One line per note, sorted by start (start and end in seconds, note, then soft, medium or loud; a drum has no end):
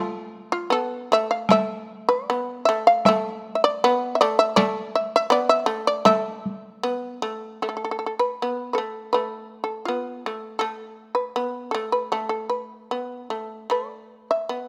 0.00 0.70 A3 medium
0.00 0.48 F4 medium
0.52 0.70 F4 medium
0.70 1.10 B3 medium
0.70 1.08 A4 medium
1.12 1.49 A3 medium
1.12 1.30 E5 medium
1.31 1.49 F5 medium
1.49 2.29 A3 medium
1.49 2.06 E5 medium
1.49 taiko rim medium
1.49 taiko high medium
2.09 2.63 D5 medium
2.30 2.68 B3 medium
2.65 3.07 A3 medium
2.65 2.84 E5 medium
2.87 3.05 F5 medium
3.05 3.84 A3 medium
3.05 3.53 E5 loud
3.05 taiko rim medium
3.05 taiko high medium
3.55 3.63 E5 medium
3.64 4.12 D5 loud
3.84 4.21 B3 medium
4.15 4.20 E5 medium
4.21 4.56 A3 medium
4.21 4.38 D5 medium
4.39 4.56 E5 loud
4.56 5.30 A3 medium
4.56 4.91 D5 loud
4.56 taiko rim medium
4.56 taiko high medium
4.95 5.12 E5 medium
5.16 5.31 E5 loud
5.30 5.66 B3 medium
5.30 5.48 D5 medium
5.49 5.84 E5 loud
5.66 6.04 A3 medium
5.87 6.05 D5 medium
6.05 6.83 A3 medium
6.05 7.19 E5 medium
6.05 taiko rim medium
6.05 taiko high medium
6.46 taiko high soft
6.83 7.22 B3 medium
7.22 7.62 A3 medium
7.62 8.39 A3 medium
7.62 7.68 A4 medium
7.69 7.75 A4 soft
7.77 7.83 A4 soft
7.85 7.90 A4 soft
7.91 7.98 A4 medium
7.99 8.05 A4 soft
8.06 8.13 A4 medium
8.19 8.66 B4 medium
8.42 8.78 B3 medium
8.73 9.10 A4 medium
8.73 8.78 B4 soft
8.78 9.13 A3 medium
9.13 9.88 A3 medium
9.13 9.63 B4 medium
9.64 9.84 A4 medium
9.85 10.25 B3 medium
9.85 10.38 F4 medium
10.26 10.60 A3 medium
10.59 11.35 A3 medium
10.59 11.13 A4 medium
11.15 11.70 B4 medium
11.36 11.74 B3 medium
11.71 12.11 A3 medium
11.71 11.91 A4 medium
11.92 12.11 B4 medium
12.12 12.91 A3 medium
12.12 12.28 A4 medium
12.29 12.49 A4 medium
12.49 13.26 B4 medium
12.91 13.30 B3 soft
13.30 13.69 A3 soft
13.70 14.49 A3 medium
13.70 14.27 D5 medium
14.31 14.68 E5 medium
14.49 14.68 B3 medium